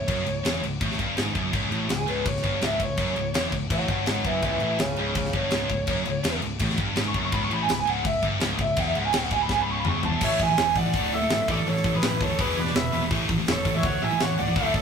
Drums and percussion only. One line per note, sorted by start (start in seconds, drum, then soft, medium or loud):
0.08 kick loud
0.08 crash medium
0.26 crash medium
0.45 snare loud
0.45 crash medium
0.63 crash medium
0.81 kick loud
0.81 crash medium
0.91 snare soft
0.99 kick medium
0.99 crash medium
1.17 snare medium
1.17 crash medium
1.35 kick medium
1.35 crash medium
1.53 kick loud
1.53 crash medium
1.72 crash medium
1.89 snare loud
1.89 crash medium
2.08 crash medium
2.25 kick loud
2.25 crash medium
2.37 snare soft
2.43 kick medium
2.43 crash medium
2.61 snare medium
2.61 crash medium
2.80 kick medium
2.80 crash medium
2.97 kick loud
2.97 crash medium
3.16 crash medium
3.34 snare loud
3.34 crash medium
3.52 kick medium
3.52 crash medium
3.70 kick loud
3.70 crash medium
3.88 kick medium
3.88 crash medium
4.06 snare loud
4.06 crash medium
4.24 kick medium
4.24 crash medium
4.42 kick loud
4.42 crash medium
4.60 crash medium
4.79 snare loud
4.79 crash medium
4.96 crash medium
5.15 kick loud
5.15 crash medium
5.25 snare soft
5.33 kick medium
5.33 crash medium
5.51 snare medium
5.51 crash medium
5.69 kick medium
5.69 crash medium
5.87 kick loud
5.87 crash medium
6.05 crash medium
6.24 snare loud
6.24 crash medium
6.42 crash medium
6.59 kick loud
6.59 crash loud
6.70 snare soft
6.77 kick medium
6.77 crash medium
6.96 snare loud
6.96 crash medium
7.14 kick medium
7.14 crash medium
7.32 kick loud
7.32 crash medium
7.51 crash medium
7.69 snare loud
7.69 crash medium
7.87 crash medium
8.05 kick loud
8.05 crash medium
8.23 kick medium
8.23 crash medium
8.40 snare loud
8.40 crash medium
8.58 kick medium
8.58 crash medium
8.76 kick loud
8.76 crash medium
8.95 crash medium
9.13 snare loud
9.13 crash medium
9.30 kick medium
9.30 crash medium
9.49 kick loud
9.49 snare medium
9.85 mid tom medium
10.03 floor tom medium
10.21 kick loud
10.21 crash loud
10.39 kick loud
10.39 open hi-hat medium
10.57 snare loud
10.57 open hi-hat medium
10.75 kick medium
10.75 open hi-hat medium
10.93 kick loud
10.93 open hi-hat loud
11.11 open hi-hat medium
11.29 snare loud
11.29 open hi-hat medium
11.48 kick loud
11.48 open hi-hat medium
11.67 open hi-hat medium
11.76 snare soft
11.84 kick medium
11.84 open hi-hat medium
12.02 snare loud
12.02 open hi-hat loud
12.20 kick loud
12.20 open hi-hat medium
12.39 kick loud
12.39 open hi-hat loud
12.57 open hi-hat medium
12.67 snare soft
12.75 snare loud
12.75 open hi-hat medium
12.92 open hi-hat medium
13.11 kick loud
13.11 open hi-hat medium
13.29 kick loud
13.29 open hi-hat medium
13.47 snare loud
13.47 open hi-hat loud
13.65 kick medium
13.65 open hi-hat medium
13.83 kick loud
13.83 open hi-hat medium
14.02 open hi-hat medium
14.19 snare loud
14.19 open hi-hat medium
14.38 open hi-hat medium
14.56 kick loud
14.56 open hi-hat loud
14.74 kick loud
14.74 open hi-hat medium